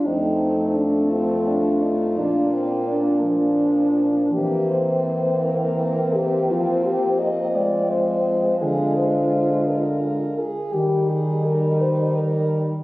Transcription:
<<
  \new Staff \with { instrumentName = "French horn" } { \time 12/8 \key bes \mixolydian \tempo 4. = 56 ees'4 d'8 f'1 r8 | g'8 c''4 bes'4 g'8 f'8 g'8 ees''8 d''8 c''4 | aes'8 c''4 bes'4 aes'8 g'8 aes'8 bes'8 c''8 bes'8 r8 | }
  \new Staff \with { instrumentName = "French horn" } { \time 12/8 \key bes \mixolydian c'4 r8 c'8 d'8 ees'8 d'8 c'8 d'8 d'4. | c'1. | f'2~ f'8 r8 ees'2. | }
  \new Staff \with { instrumentName = "French horn" } { \clef bass \time 12/8 \key bes \mixolydian a2. bes4. f4. | bes1~ bes8 aes4.~ | aes2~ aes8 r8 g2. | }
  \new Staff \with { instrumentName = "French horn" } { \clef bass \time 12/8 \key bes \mixolydian f,2. bes,2. | e2. f2. | d2~ d8 r8 ees2. | }
>>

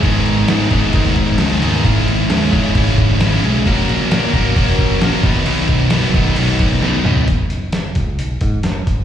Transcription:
<<
  \new Staff \with { instrumentName = "Distorted electric guitar" } { \time 4/4 \key b \major \tempo 4 = 132 <gis, dis gis b dis' gis'>4 <gis, dis gis b dis' gis'>8 <gis, dis gis b dis' gis'>8 <gis, dis gis b dis' gis'>4 <gis, dis gis b dis' gis'>8 <gis, dis gis b dis' gis'>8 | <gis, cis gis cis' e' gis'>4 <gis, cis gis cis' e' gis'>8 <gis, cis gis cis' e' gis'>8 <gis, cis gis cis' e' gis'>4 <gis, cis gis cis' e' gis'>8 <gis, cis gis cis' e' gis'>8 | <ais cis' fis' ais'>4 <ais cis' fis' ais'>8 <ais cis' fis' ais'>8 <ais cis' fis' ais'>4 <ais cis' fis' ais'>8 <b, dis fis b dis' b'>8 | <b, dis fis b dis' b'>4 <b, dis fis b dis' b'>8 <b, dis fis b dis' b'>8 <b, dis fis b dis' b'>4 <b, dis fis b dis' b'>8 <b, dis fis b dis' b'>8 |
r1 | }
  \new Staff \with { instrumentName = "Picked electric bass" } { \clef bass \time 4/4 \key b \major gis,,8 gis,,8 gis,8 fis,,8 dis,8 gis,,8 cis,8 dis,8 | gis,,8 gis,,8 dis,8 gis,,8 gis,,8 gis,,8 gis,,8 b,,8 | ais,,8 ais,,8 ais,8 gis,,8 e,,8 ais,,8 ais,,8 b,,8 | b,,8 b,,8 fis,,8 b,,8 b,,8 b,,8 b,,8 b,,8 |
fis,,8 fis,,8 fis,,8 cis,8 b,,8 gis,8 fis,8 fis,,8 | }
  \new DrumStaff \with { instrumentName = "Drums" } \drummode { \time 4/4 <cymc bd>8 cymc8 <cymc sn>8 <cymc bd>8 <cymc bd>8 <cymc bd>8 <cymc sn>16 sn16 cymc8 | <cymc bd>8 cymc8 <cymc sn>8 <cymc bd>8 <cymc bd>8 <cymc bd>8 <cymc sn>16 sn16 cymc8 | <cymc bd>8 cymc8 <cymc sn>8 <cymc bd>8 <cymc bd>8 <cymc bd>8 <cymc sn>8 <cymc bd>8 | cymc8 <cymc bd>8 <cymc sn>8 <cymc bd>8 cymc8 <cymc bd>8 sn8 toml16 tomfh16 |
<hho bd>8 hho8 <hho sn>8 <hho bd>8 hho8 <hho bd>8 <hho sn>8 <hho bd>8 | }
>>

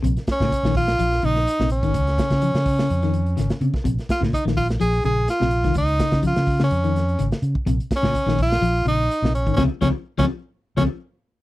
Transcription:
<<
  \new Staff \with { instrumentName = "Tenor saxophone" } { \time 4/4 \key bes \minor \tempo 4 = 126 r8 des'4 f'4 ees'4 des'8~ | des'2.~ des'8 r8 | r8 f'8 ees'8 f'8 aes'8 aes'8 f'4 | ees'4 f'8. des'4. r8. |
r8 des'4 f'4 ees'4 des'8 | des'16 r16 des'16 r8 des'16 r4 des'16 r4 r16 | }
  \new Staff \with { instrumentName = "Clean electric guitar" } { \clef bass \time 4/4 \key bes \minor c8 r16 des8 ees8 r16 f8 des8 r16 c8 ees16~ | ees16 r16 des8 f8 r16 des8 ees8 r16 des8 c8 | c8 r16 des8 ees8 r16 f8 des8 r16 c8 ees16~ | ees16 r16 des8 f8 r16 des8 ees8 r16 des8 r8 |
c8 r16 des8 ees8 r16 f8 des8 r16 c8 ees16 | <c des f>16 r16 <c des f>16 r8 <c des f>16 r4 <c des f>16 r4 r16 | }
  \new Staff \with { instrumentName = "Fingered electric bass" } { \clef bass \time 4/4 \key bes \minor bes,,16 r8 bes,16 r16 bes,,8. bes,,8 bes,,8 r16 bes,,8 aes,,16 | des,8 r16 des8 des8. f,4 aes,,16 r16 des16 r16 | bes,,16 r8 bes,16 r16 bes,,8. bes,,8 bes,,8 r16 bes,,8 c,16 | des,8 r16 des8 des8. f,4 aes,,16 r16 des16 r16 |
bes,,16 r8 bes,16 r16 bes,,8. bes,,8 bes,,8 r16 bes,,8 aes,,16 | des,16 r16 des,16 r8 des,16 r4 des,16 r4 r16 | }
  \new DrumStaff \with { instrumentName = "Drums" } \drummode { \time 4/4 <hh bd>16 <hh sn>16 <hh bd sn>16 <bd sn>16 <hh bd>16 sn16 <hho bd>16 <hh sn>16 hh16 <hh sn>16 hh16 sn16 hh16 sn16 hh16 <hh bd>16 | <hh bd>16 <hh sn>16 <hh bd sn>16 <hh bd sn>16 hh16 <hh sn>16 <hho bd>16 sn16 hh16 <hh sn>16 hh16 hh16 <hh sn>16 <hh sn>16 hh16 <bd sn>16 | <hh bd>16 <hh sn>16 <hh bd sn>16 <bd sn>16 <hh bd>16 sn16 <hho bd>16 <hh sn>16 hh16 hh16 hh8 <hh sn>16 sn16 hh16 <hh bd sn>16 | <hh bd>16 hh16 <hh bd sn>16 <hh bd sn>16 <hh bd>16 <hh sn>16 <hho bd>16 sn16 hh16 hh16 <hh sn>16 hh16 hh16 <hh sn>16 hh16 bd16 |
<hh bd>16 hh16 <hh bd sn>16 <bd sn>16 <hh bd>16 sn16 <hho bd>16 <hh sn>16 hh16 hh16 hh8 hh16 sn16 hh16 <hh bd>16 | <bd sn>8 <bd sn>8 r16 <bd sn>8. r8 <bd sn>8 r4 | }
>>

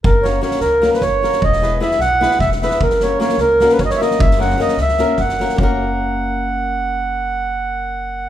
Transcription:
<<
  \new Staff \with { instrumentName = "Accordion" } { \time 7/8 \key fis \mixolydian \tempo 4 = 152 ais'8 cis''8 cis''8 ais'8. b'16 cis''4 | dis''4 e''8 fis''4 e''8 e''8 | ais'8 cis''8 cis''8 ais'8. b'16 cis''32 dis''32 cis''32 e''32 dis''8 | e''8 fis''8 dis''8 e''4 fis''4 |
fis''2.~ fis''8~ | fis''2.~ fis''8 | }
  \new Staff \with { instrumentName = "Nylon-string guitar" } { \time 7/8 \key fis \mixolydian r8 <ais cis' fis' ais'>8 <ais cis' fis' ais'>8 r8 <ais cis' fis' ais'>8 r8 <ais cis' fis' ais'>8 | r8 <b e' gis' b'>8 <b e' gis' b'>8 r8 <b e' gis' b'>8 r8 <b e' gis' b'>8 | r8 <ais cis' fis' ais'>8 <ais cis' fis' ais'>8 r8 <ais cis' fis' ais'>8 r8 <ais cis' fis' ais'>8 | r8 <ais cis' fis' ais'>8 <ais cis' fis' ais'>8 r8 <ais cis' fis' ais'>8 r8 <ais cis' fis' ais'>8 |
<ais cis' fis' ais'>2.~ <ais cis' fis' ais'>8~ | <ais cis' fis' ais'>2.~ <ais cis' fis' ais'>8 | }
  \new Staff \with { instrumentName = "Upright bass" } { \clef bass \time 7/8 \key fis \mixolydian fis,,4. cis,4 fis,,4 | e,,4. b,,4 e,,4 | fis,,4. cis,4 fis,,4 | fis,,4. cis,4 fis,,4 |
fis,,2.~ fis,,8~ | fis,,2.~ fis,,8 | }
  \new DrumStaff \with { instrumentName = "Drums" } \drummode { \time 7/8 bd8 sn8 sn16 sn16 sn8 sn16 sn16 <bd sn>8 sn16 sn16 | bd16 sn16 sn8 sn16 sn16 sn8 sn16 sn16 <bd sn>16 sn16 sn16 sn16 | bd16 sn16 sn8 sn16 sn16 sn8 sn16 sn16 <bd sn>16 sn16 sn16 sn16 | bd16 sn16 sn16 sn16 sn16 sn16 sn16 sn16 sn8 <bd sn>16 sn16 sn16 sn16 |
bd4. r4 r4 | r4. r4 r4 | }
>>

